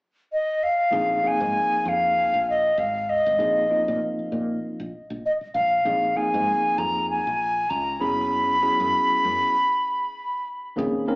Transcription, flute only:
0.32 0.65 D#5 medium
0.63 1.28 F5 medium
1.27 1.90 G#5 medium
1.88 2.48 F5 medium
2.50 2.80 D#5 medium
2.79 3.11 F5 medium
3.09 4.01 D#5 medium
5.25 5.32 D#5 medium
5.54 6.18 F5 medium
6.16 6.79 G#5 medium
6.78 7.09 A#5 medium
7.10 7.71 G#5 medium
7.69 8.02 A#5 medium
8.01 10.47 B5 medium

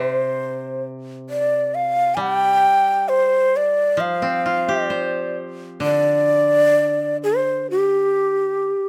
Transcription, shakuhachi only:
0.00 0.07 B4 medium
0.07 0.84 C5 medium
1.30 1.76 D5 medium
1.75 2.16 F5 medium
2.15 2.22 G#5 medium
2.21 3.10 G5 loud
3.09 3.58 C5 medium
3.56 4.02 D5 medium
4.00 4.90 F5 medium
4.90 5.37 D5 medium
5.83 7.17 D5 loud
7.24 7.67 C5 medium
7.71 8.89 G4 medium

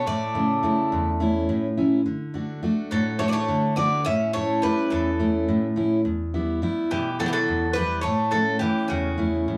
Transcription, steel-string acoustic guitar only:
0.06 0.62 A2 medium
0.34 0.62 C#3 soft
0.34 0.62 A3 soft
0.34 0.63 E4 medium
0.63 1.09 C#3 soft
0.63 1.09 A3 medium
0.63 1.09 E4 medium
0.92 1.47 E2 medium
1.20 1.66 A3 soft
1.20 1.66 C#4 soft
1.20 1.66 E4 medium
1.49 2.04 A2 medium
1.77 2.00 A3 soft
1.77 2.00 C#4 soft
1.77 2.00 E4 medium
2.06 2.61 D3 medium
2.34 2.61 A3 soft
2.34 2.62 D4 soft
2.34 2.63 F#4 soft
2.63 3.08 A3 soft
2.63 3.09 D4 soft
2.63 3.09 F#4 medium
2.92 3.47 A2 medium
3.19 3.65 A3 medium
3.19 3.65 D4 soft
3.19 3.66 F#4 medium
3.48 4.04 D3 medium
3.77 4.00 A3 soft
3.77 4.00 D4 soft
3.77 4.00 F#4 medium
4.06 4.62 A2 medium
4.36 4.62 A3 soft
4.36 4.62 C#4 soft
4.36 4.63 E4 medium
4.64 5.09 A3 medium
4.64 5.09 C#4 soft
4.64 5.10 E4 medium
4.92 5.47 E2 medium
5.19 5.65 A3 medium
5.19 5.66 C#4 soft
5.19 5.66 E4 medium
5.48 6.04 A2 medium
5.76 5.99 A3 soft
5.76 6.00 C#4 soft
5.76 6.00 E4 medium
6.05 6.61 E2 medium
6.34 6.61 G3 soft
6.34 6.61 B3 soft
6.34 6.62 E4 medium
6.62 7.08 G3 medium
6.62 7.08 B3 soft
6.62 7.09 E4 medium
6.92 7.47 B2 medium
7.19 7.65 E3 medium
7.19 7.66 B3 soft
7.19 7.66 E4 medium
7.48 8.04 E2 medium
7.77 8.00 G3 medium
7.77 8.00 B3 soft
7.77 8.00 E4 soft
8.06 8.61 A2 medium
8.33 8.60 A3 soft
8.33 8.60 C#4 soft
8.33 8.61 E4 soft
8.61 9.08 A3 medium
8.61 9.08 C#4 soft
8.61 9.08 E4 medium
8.90 9.46 E2 medium
9.18 9.57 A3 medium
9.18 9.57 C#4 soft
9.18 9.57 E4 medium
9.48 9.57 A2 medium

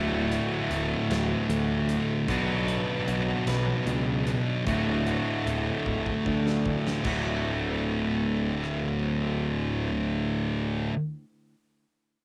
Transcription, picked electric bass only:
0.00 0.38 D1 medium
0.70 0.94 D1 medium
1.10 1.33 D1 medium
1.49 1.97 D2 medium
2.29 2.76 B1 medium
3.07 3.31 B1 medium
3.47 3.71 B1 medium
3.86 4.34 C#2 medium
4.67 5.14 D1 medium
5.46 5.70 D1 medium
5.86 6.10 D1 medium
6.26 6.74 D2 medium
7.05 10.89 D1 medium

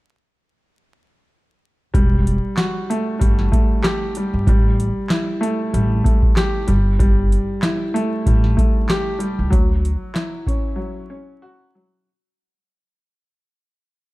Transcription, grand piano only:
1.94 3.18 G3 medium
2.57 4.15 F#4 medium
2.90 3.50 A3 medium
3.19 4.15 G3 medium
3.52 4.47 A3 medium
3.83 4.47 G4 medium
4.17 4.47 G3 medium
4.49 5.72 G3 medium
5.10 6.68 E4 medium
5.41 6.03 A3 medium
5.74 6.66 G3 medium
6.04 6.68 A3 medium
6.36 6.68 G4 loud
6.67 6.98 G3 medium
6.99 8.25 G3 medium
7.63 9.21 E4 medium
7.94 8.55 A3 medium
8.27 9.17 G3 medium
8.57 9.52 A3 medium
8.90 9.52 G4 loud
9.19 9.51 G3 medium
9.50 10.74 F#3 medium
10.14 11.72 E4 medium
10.47 11.08 C#4 medium
10.76 11.73 F#3 medium
11.10 12.05 C#4 medium
11.42 12.05 F#4 loud
11.75 12.06 F#3 medium

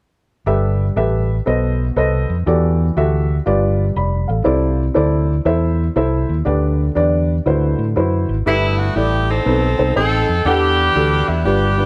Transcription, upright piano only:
0.46 1.25 G2 medium
0.46 0.84 G4 medium
0.46 0.84 A4 medium
0.46 0.84 B4 medium
0.46 0.84 E5 medium
0.96 1.34 G4 medium
0.96 1.34 A4 medium
0.96 1.34 B4 medium
0.96 1.34 E5 medium
1.46 2.25 B2 medium
1.46 1.83 A4 medium
1.46 1.84 B4 medium
1.46 1.84 C5 medium
1.46 1.84 D#5 medium
1.96 2.34 A4 medium
1.96 2.34 B4 medium
1.96 2.34 C5 medium
1.96 2.35 D#5 medium
2.46 3.25 E3 medium
2.46 2.84 F#4 medium
2.46 2.84 G4 medium
2.46 2.84 A4 medium
2.46 2.84 D5 medium
2.97 3.34 F#4 medium
2.97 3.34 G4 medium
2.97 3.34 A4 medium
2.97 3.34 E5 medium
3.46 4.25 G2 medium
3.46 3.83 F4 medium
3.46 3.83 G4 medium
3.46 3.84 B4 medium
3.46 3.84 D5 medium
3.97 4.28 D5 medium
3.97 4.27 B5 medium
4.28 4.43 A4 soft
4.28 4.76 F5 medium
4.44 5.24 C3 medium
4.44 4.82 E4 medium
4.44 4.83 A4 medium
4.44 4.83 C5 medium
4.44 4.83 D5 medium
4.94 5.33 E4 medium
4.94 5.33 A4 medium
4.94 5.33 C5 medium
4.94 5.33 D5 medium
5.45 5.83 E4 medium
5.45 5.83 A4 medium
5.45 5.83 C5 medium
5.45 5.83 E5 medium
5.96 6.33 E4 medium
5.96 6.33 A4 medium
5.96 6.34 C5 medium
5.96 6.34 E5 medium
6.45 7.24 D3 medium
6.45 6.83 D4 medium
6.45 6.83 G4 medium
6.45 6.83 B4 medium
6.45 6.83 D5 medium
6.95 7.33 D4 medium
6.95 7.33 G4 medium
6.95 7.33 B4 medium
6.95 7.33 D5 medium
7.46 8.25 D3 medium
7.46 7.83 E4 medium
7.46 7.83 F#4 medium
7.46 7.84 B4 medium
7.46 7.84 C5 medium
7.96 8.33 E4 medium
7.96 8.33 F#4 medium
7.96 8.33 B4 medium
7.96 8.34 C5 medium
8.46 9.24 G2 medium
8.46 8.83 E4 medium
8.46 8.83 G4 medium
8.46 8.83 A4 medium
8.46 8.84 B4 medium
8.96 9.33 E4 medium
8.96 9.33 G4 medium
8.96 9.33 A4 medium
8.96 9.33 D5 medium
9.45 10.24 B2 medium
9.45 9.66 C4 medium
9.45 9.66 D#4 medium
9.45 9.66 A4 medium
9.45 9.66 B4 medium
9.78 9.89 C4 medium
9.78 9.89 D#4 medium
9.78 9.89 A4 medium
9.78 9.90 C5 medium
9.95 10.32 C4 medium
9.95 10.33 D#4 medium
9.95 10.33 A4 medium
9.95 10.33 C5 medium
10.45 11.24 E3 medium
10.45 10.82 D4 medium
10.45 10.83 G4 medium
10.45 10.83 A4 loud
10.45 10.83 F#5 medium
10.95 11.32 D4 medium
10.95 11.33 F#4 medium
10.95 11.33 G4 medium
10.95 11.33 A4 medium
11.45 11.86 G2 medium
11.45 11.65 D4 medium
11.45 11.66 F4 medium
11.45 11.66 G4 medium
11.45 11.66 B4 medium
11.78 11.86 D4 medium
11.78 11.86 F4 medium
11.78 11.86 G4 medium
11.78 11.86 B4 medium

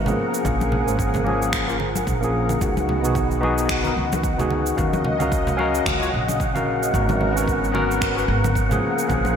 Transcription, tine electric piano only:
0.05 0.43 F3 medium
0.05 0.41 A#3 medium
0.05 0.42 C#4 medium
0.05 0.43 G#4 medium
0.44 0.85 F3 medium
0.44 0.83 A#3 medium
0.44 0.84 C#4 medium
0.44 0.85 G#4 medium
0.86 1.24 F3 medium
0.86 1.22 A#3 medium
0.86 1.23 C#4 medium
0.86 1.24 G#4 medium
1.24 1.65 F3 medium
1.24 1.64 A#3 medium
1.24 1.65 C#4 medium
1.24 1.66 G#4 loud
1.67 1.75 A#3 medium
1.67 1.76 C#4 medium
1.67 1.76 F4 medium
1.67 1.77 A#4 medium
2.21 2.59 F3 medium
2.21 2.58 A#3 medium
2.21 2.58 C#4 medium
2.21 2.59 G#4 medium
2.60 3.00 B3 medium
2.60 3.00 D#4 medium
2.60 3.01 F#4 medium
2.60 3.01 G#4 medium
3.02 3.39 B3 medium
3.02 3.40 D#4 medium
3.02 3.40 F#4 medium
3.02 3.41 G#4 medium
3.41 3.80 B3 medium
3.41 3.81 D#4 medium
3.41 3.81 F#4 medium
3.41 3.82 G#4 loud
3.83 3.91 B3 medium
3.83 3.92 D#4 medium
3.83 3.92 F#4 medium
3.83 3.93 A#4 medium
4.37 4.74 B3 medium
4.37 4.74 D#4 medium
4.37 4.75 F#4 medium
4.37 4.76 G#4 medium
4.76 5.16 C#4 medium
4.76 5.17 F#4 medium
4.76 5.17 A#4 medium
4.76 5.16 F5 medium
5.19 5.55 C#4 medium
5.19 5.56 F#4 medium
5.19 5.57 A#4 medium
5.19 5.56 F5 medium
5.57 5.97 C#4 medium
5.57 5.98 F#4 medium
5.57 5.98 A#4 loud
5.57 5.97 F5 medium
5.99 6.07 C#4 medium
5.99 6.08 F4 medium
5.99 6.08 F#4 medium
5.99 6.09 C#5 medium
6.53 6.90 C#4 medium
6.53 6.91 F#4 medium
6.53 6.92 A#4 medium
6.53 6.91 F5 medium
6.92 7.32 B3 medium
6.92 7.32 C#4 medium
6.92 7.33 F#4 medium
6.92 7.33 A#4 medium
7.34 7.71 B3 medium
7.34 7.72 C#4 medium
7.34 7.72 F#4 medium
7.34 7.73 A#4 medium
7.72 8.12 B3 medium
7.72 8.13 C#4 medium
7.72 8.14 F#4 medium
7.72 8.14 A#4 loud
8.15 8.23 B3 medium
8.15 8.24 C#4 medium
8.15 8.24 F#4 medium
8.15 8.25 B4 loud
8.69 9.07 F3 medium
8.69 9.06 A#3 medium
8.69 9.07 C#4 medium
8.69 9.08 G#4 medium
9.07 9.36 F3 medium
9.07 9.36 A#3 medium
9.07 9.36 C#4 medium
9.07 9.36 G#4 medium

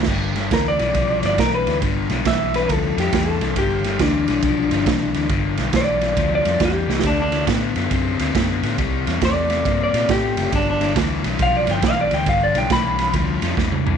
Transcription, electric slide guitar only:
0.54 0.67 A#4 medium
0.68 1.23 D5 loud
1.26 1.39 D5 medium
1.40 1.53 A#4 medium
1.54 1.77 B4 medium
2.27 2.54 E5 medium
2.56 2.72 B4 medium
2.72 2.99 A4 medium
3.00 3.29 G4 medium
3.29 3.56 A4 medium
3.58 4.00 G4 medium
4.02 5.27 D4 loud
5.76 6.31 D5 medium
6.35 6.62 D5 medium
6.65 7.05 G4 medium
7.07 7.20 D4 medium
7.22 7.44 D4 loud
9.25 9.80 D5 medium
9.84 10.10 D5 medium
10.11 10.52 G4 loud
10.55 10.68 D4 medium
10.70 10.92 D4 medium
11.42 11.55 F5 loud
11.57 11.70 D5 medium
11.71 11.84 G5 medium
11.87 11.99 F5 loud
12.01 12.14 D5 medium
12.14 12.27 G5 medium
12.29 12.42 F5 loud
12.43 12.57 D5 medium
12.58 12.71 G5 medium
12.72 13.14 B5 loud

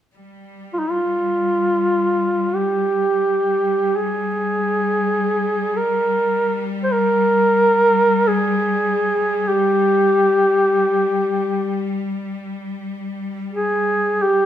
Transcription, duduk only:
0.74 0.80 F4 medium
0.79 0.92 D#4 medium
0.91 2.56 F4 medium
2.55 3.98 G4 medium
3.96 5.78 G#4 medium
5.77 6.62 A#4 medium
6.84 6.93 C5 medium
6.92 8.29 A#4 medium
8.28 9.50 G#4 medium
9.48 12.13 G4 medium
13.53 14.24 G#4 medium
14.23 14.46 G4 medium

